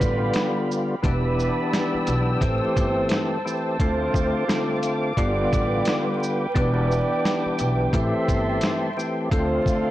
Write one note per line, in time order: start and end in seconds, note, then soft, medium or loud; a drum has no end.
0.00 0.28 A1 medium
0.00 0.95 D3 medium
0.00 0.95 G3 medium
0.00 0.95 B3 medium
0.00 0.68 F4 medium
0.00 0.96 F4 loud
0.00 0.68 G4 medium
0.00 1.03 G4 medium
0.00 0.68 B4 loud
0.00 1.01 D5 medium
0.00 1.03 F5 medium
0.00 1.03 B5 medium
0.00 kick medium
0.00 closed hi-hat medium
0.00 shaker medium
0.33 snare loud
0.33 closed hi-hat medium
0.72 shaker medium
1.02 1.47 E1 loud
1.02 2.40 E3 medium
1.02 2.41 B3 medium
1.02 2.41 D4 medium
1.02 2.06 E4 medium
1.02 2.41 G4 loud
1.02 2.06 G4 medium
1.02 2.06 B4 medium
1.02 2.40 D5 medium
1.02 3.77 G5 medium
1.02 2.41 B5 medium
1.02 3.77 E6 medium
1.02 kick loud
1.02 closed hi-hat medium
1.40 shaker medium
1.73 snare loud
1.73 closed hi-hat medium
1.94 muted upright bass stroke soft
2.07 2.34 B1 loud
2.07 closed hi-hat medium
2.07 shaker medium
2.40 2.58 A1 loud
2.40 3.38 E3 medium
2.40 3.38 A3 medium
2.40 3.39 C4 medium
2.40 3.42 G4 medium
2.40 3.39 G4 loud
2.40 3.43 A4 medium
2.40 3.43 C5 loud
2.40 5.15 C5 medium
2.40 5.15 A5 medium
2.40 kick medium
2.40 closed hi-hat medium
2.63 muted upright bass stroke soft
2.77 3.04 G1 loud
2.77 kick loud
2.77 closed hi-hat medium
2.77 shaker medium
3.09 snare loud
3.09 closed hi-hat medium
3.45 3.77 E3 medium
3.45 3.77 A3 medium
3.45 3.78 C4 medium
3.45 3.78 G4 medium
3.45 shaker medium
3.79 4.07 D2 loud
3.79 4.44 D3 loud
3.79 4.45 A3 medium
3.79 4.45 C4 medium
3.79 4.81 F4 medium
3.79 4.45 F4 loud
3.79 4.81 A4 medium
3.79 4.81 C5 medium
3.79 6.53 F5 medium
3.79 6.53 D6 medium
3.79 kick loud
3.79 closed hi-hat medium
4.14 4.31 D2 medium
4.14 kick loud
4.14 shaker medium
4.48 5.13 D3 medium
4.48 5.13 A3 medium
4.48 5.13 C4 medium
4.48 5.13 F4 loud
4.48 snare loud
4.48 closed hi-hat medium
4.83 closed hi-hat medium
4.83 shaker medium
5.17 5.44 G1 loud
5.17 6.47 D3 loud
5.17 6.47 G3 medium
5.17 6.47 B3 medium
5.17 6.47 F4 loud
5.17 6.19 G4 medium
5.17 6.19 B4 medium
5.17 7.91 B4 medium
5.17 6.19 D5 loud
5.17 9.28 G5 medium
5.17 kick medium
5.17 closed hi-hat medium
5.53 5.80 A1 medium
5.53 kick loud
5.53 closed hi-hat medium
5.53 shaker medium
5.85 snare loud
5.85 closed hi-hat medium
6.23 shaker medium
6.54 6.99 E1 loud
6.54 7.92 E3 medium
6.54 7.93 B3 medium
6.54 7.93 D4 medium
6.54 7.93 G4 loud
6.54 7.57 G4 medium
6.54 7.57 B4 medium
6.54 7.57 D5 loud
6.54 7.92 E5 medium
6.54 7.92 D6 medium
6.54 kick loud
6.54 closed hi-hat medium
6.92 shaker medium
7.25 snare loud
7.25 closed hi-hat medium
7.46 muted upright bass stroke soft
7.59 7.86 B1 medium
7.59 closed hi-hat medium
7.59 shaker medium
7.93 8.10 A1 loud
7.93 8.90 E3 loud
7.93 8.90 A3 medium
7.93 8.90 C4 medium
7.93 8.91 G4 loud
7.93 8.95 A4 medium
7.93 9.30 A4 medium
7.93 8.95 C5 medium
7.93 8.95 E5 loud
7.93 9.30 E5 medium
7.93 9.30 C6 medium
7.93 kick medium
7.93 closed hi-hat medium
8.15 muted upright bass stroke medium
8.29 8.55 G1 loud
8.29 kick medium
8.29 closed hi-hat medium
8.29 shaker medium
8.61 snare loud
8.61 closed hi-hat medium
8.97 9.29 E3 medium
8.97 9.29 A3 medium
8.97 9.29 C4 medium
8.97 9.30 G4 medium
8.97 shaker medium
9.30 9.59 D2 loud
9.30 9.91 D3 medium
9.30 9.91 A3 medium
9.30 9.91 C4 medium
9.30 9.91 F4 medium
9.30 9.91 F4 loud
9.30 9.91 A4 medium
9.30 9.91 C5 loud
9.30 9.91 D5 medium
9.30 9.91 F5 medium
9.30 9.91 C6 medium
9.30 kick loud
9.30 closed hi-hat medium
9.66 9.82 D2 medium
9.66 kick loud
9.66 shaker medium